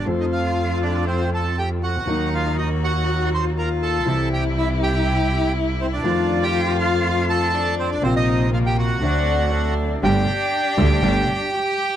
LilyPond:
<<
  \new Staff \with { instrumentName = "Bandoneon" } { \time 4/4 \key f \mixolydian \tempo 4 = 120 r16 <ees' ees''>16 <f' f''>4 <d' d''>8 <c' c''>8 <a' a''>8 <g' g''>8 <ges' ges''>8~ | <ges' ges''>8 <f' f''>8 <ees' ees''>8 <ges' ges''>4 <c'' c'''>8 <bes' bes''>8 <a' a''>8~ | <a' a''>8 <g' g''>8 <e' e''>8 <g' g''>4. r8 <c' c''>16 <d' d''>16~ | <d' d''>8. <g' g''>8. <f' f''>4 <a' a''>4 <c' c''>16 <d' d''>16 |
<c' c''>16 <ees' ees''>8. <f' f''>16 <g' g''>16 <ges' ges''>2 r8 | \key c \dorian <g' g''>1 | }
  \new Staff \with { instrumentName = "Flute" } { \time 4/4 \key f \mixolydian r1 | r1 | r1 | r1 |
r2 r8 d''8 a'4 | \key c \dorian r1 | }
  \new Staff \with { instrumentName = "Cello" } { \time 4/4 \key f \mixolydian f'2.~ f'8 r8 | ees'4 ges'2 f'4 | e'1 | f'2. d'4 |
c'4 bes4 d'4 d'4 | \key c \dorian d'2. g'4 | }
  \new Staff \with { instrumentName = "String section" } { \time 4/4 \key f \mixolydian <c' f' a'>1 | <ges bes ees'>1 | <c' e' g'>1 | <ees a f'>1 |
<bes c' f'>2 <fis c' d'>2 | \key c \dorian <g a d'>8 r4 <g a d'>8 <g a d'>8 r4. | }
  \new Staff \with { instrumentName = "Grand piano" } { \clef bass \time 4/4 \key f \mixolydian <f, f a c' a'>1 | <ees, ees ges bes ees'>1 | <c, c e g c' g'>1 | <f, ees f a c' f'>1 |
<bes,, bes, c bes c' f'>2 <d, d a c' fis'>2 | \key c \dorian <g,, g, d g a g'>8 r4 <d, d g a g'>8 <g,, g, d g a g'>8 r4. | }
  \new Staff \with { instrumentName = "Double bass" } { \clef bass \time 4/4 \key f \mixolydian f,1 | ees,1 | c,1 | f,1 |
bes,,2 d,2 | \key c \dorian g,,8 r4 d,8 g,,8 r4. | }
>>